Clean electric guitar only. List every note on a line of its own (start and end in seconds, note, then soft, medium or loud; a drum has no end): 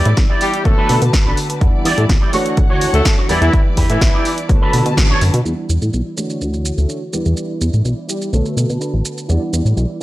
0.00 0.12 E4 medium
0.00 0.12 G4 medium
0.00 0.12 D5 loud
0.30 0.47 E4 medium
0.30 0.47 G4 medium
0.30 0.48 D5 loud
0.65 muted clean electric guitar stroke soft
0.77 1.02 D4 loud
0.77 1.02 A4 medium
0.77 1.02 B4 loud
1.26 1.37 D4 medium
1.26 1.37 A4 medium
1.26 1.37 B4 medium
1.50 muted clean electric guitar stroke soft
1.85 2.04 E4 loud
1.85 2.04 G4 medium
1.85 2.04 D5 loud
2.21 2.33 E4 medium
2.21 2.33 G4 medium
2.21 2.33 D5 loud
2.33 2.62 D4 medium
2.33 2.62 F#4 medium
2.33 2.63 C#5 loud
2.69 2.94 D4 loud
2.69 2.94 F#4 loud
2.69 2.94 C#5 loud
3.17 3.29 D4 medium
3.17 3.29 F#4 medium
3.17 3.29 C#5 medium
3.29 3.68 E4 medium
3.29 3.68 G4 medium
3.29 3.68 D5 medium
3.77 3.96 E4 loud
3.77 3.96 G4 medium
3.77 3.96 B4 loud
4.14 4.32 E4 medium
4.14 4.32 G4 medium
4.14 4.32 D5 loud
4.49 muted clean electric guitar stroke soft
4.62 4.86 D4 loud
4.62 4.86 A4 medium
4.62 4.86 B4 loud
5.10 5.21 D4 medium
5.10 5.22 A4 medium
5.10 5.22 C#5 medium
5.34 muted clean electric guitar stroke soft
5.45 5.58 E4 loud
5.45 5.58 G4 medium
5.45 5.58 D5 loud
5.69 muted clean electric guitar stroke soft
5.93 muted clean electric guitar stroke medium
6.05 muted clean electric guitar stroke soft
6.17 6.46 D4 medium
6.17 6.46 F#4 medium
6.17 6.46 C#5 medium
6.53 muted clean electric guitar stroke loud
6.65 muted clean electric guitar stroke soft
6.88 7.01 D4 medium
6.88 7.01 F#4 medium
6.88 7.02 C#5 medium
7.13 7.52 E4 medium
7.13 7.52 G4 medium
7.13 7.52 D5 loud
7.61 muted clean electric guitar stroke soft
7.84 muted clean electric guitar stroke medium
7.97 muted clean electric guitar stroke soft
8.08 8.27 E4 medium
8.08 8.27 G4 medium
8.08 8.27 D5 medium
8.45 muted clean electric guitar stroke loud
8.57 muted clean electric guitar stroke soft
8.80 8.93 D4 medium
8.80 8.93 A4 medium
8.80 8.93 B4 medium
9.05 muted clean electric guitar stroke soft
9.28 9.41 E4 loud
9.28 9.41 G4 medium
9.28 9.42 D5 loud
9.77 muted clean electric guitar stroke medium
9.89 muted clean electric guitar stroke soft